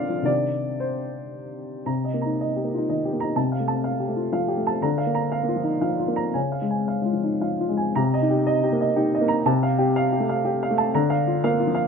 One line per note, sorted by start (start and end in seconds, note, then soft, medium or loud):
0.00 0.22 D3 medium
0.00 0.29 C4 soft
0.00 0.24 D4 soft
0.00 0.30 D#4 soft
0.00 0.29 F4 soft
0.00 0.30 A#4 medium
0.00 0.24 D5 medium
0.00 0.30 F5 medium
0.09 0.27 F3 soft
0.22 1.81 C3 soft
0.22 1.81 D#3 soft
0.22 1.82 D4 soft
0.22 1.83 G4 soft
0.22 0.80 D5 medium
0.80 1.33 C5 medium
1.86 3.32 C3 soft
1.86 2.14 A#5 soft
2.05 2.32 D#5 soft
2.14 2.34 A#3 soft
2.22 2.49 A#5 soft
2.26 2.66 D#4 soft
2.41 2.66 D#5 soft
2.56 2.82 G4 soft
2.65 2.84 A#3 soft
2.74 2.96 D#4 soft
2.74 2.89 F4 soft
2.89 3.08 D#3 soft
2.89 3.14 D#5 soft
3.05 3.30 G4 soft
3.13 3.32 A#3 soft
3.20 3.36 D#4 soft
3.20 3.36 A#5 soft
3.36 4.79 C3 soft
3.36 3.62 A5 soft
3.52 3.78 F5 soft
3.60 3.80 A3 soft
3.68 3.94 A5 soft
3.84 4.11 F5 soft
4.00 4.27 G4 soft
4.09 4.29 A3 soft
4.16 4.33 F4 soft
4.32 4.53 F3 soft
4.32 4.59 F5 soft
4.48 4.75 G4 soft
4.57 4.77 A3 soft
4.67 4.83 A5 medium
4.82 6.31 D3 medium
4.82 5.09 A#5 medium
4.98 5.25 F5 soft
5.07 5.27 A#3 soft
5.14 5.42 A#5 medium
5.32 5.59 F5 medium
5.43 5.64 A#3 soft
5.48 5.75 F4 soft
5.56 5.77 F3 soft
5.64 5.82 D#4 soft
5.81 6.03 F3 soft
5.81 6.10 F5 soft
5.99 6.28 F4 soft
6.08 6.29 A#3 soft
6.16 6.35 A#5 soft
6.34 7.92 C#3 soft
6.34 6.63 G#5 soft
6.52 6.81 F5 soft
6.62 6.84 G#3 soft
6.70 7.00 G#5 soft
6.88 7.17 F5 soft
7.02 7.24 G#3 soft
7.02 7.35 F4 soft
7.13 7.36 F3 soft
7.24 7.42 D#4 soft
7.41 7.64 F3 soft
7.41 7.71 F5 soft
7.61 7.89 F4 soft
7.69 7.91 G#3 soft
7.77 7.96 G#5 soft
7.95 9.41 C3 medium
7.95 8.23 A#5 medium
8.14 8.41 D#5 medium
8.22 8.62 D#4 medium
8.30 8.57 G4 medium
8.47 8.74 D#5 medium
8.64 8.90 G4 medium
8.73 9.12 A#3 medium
8.81 9.07 D#5 medium
8.96 9.35 D#4 medium
8.96 9.22 G4 medium
9.15 9.40 D#5 medium
9.21 9.46 A#3 medium
9.28 9.45 A#5 medium
9.46 10.89 C3 medium
9.46 9.72 A5 medium
9.63 9.89 F5 medium
9.79 10.05 G4 medium
9.96 10.22 F5 medium
10.12 10.38 G4 medium
10.20 10.59 A3 medium
10.29 10.55 F5 medium
10.45 10.71 G4 medium
10.63 10.87 F5 medium
10.71 10.94 A3 medium
10.78 10.93 A5 medium
10.94 11.88 D3 medium
10.94 11.19 A#5 medium
11.10 11.35 F5 medium
11.27 11.52 F4 medium
11.44 11.81 A#3 medium
11.44 11.68 F5 medium
11.60 11.84 F4 medium
11.67 11.88 F3 medium
11.75 11.88 F5 medium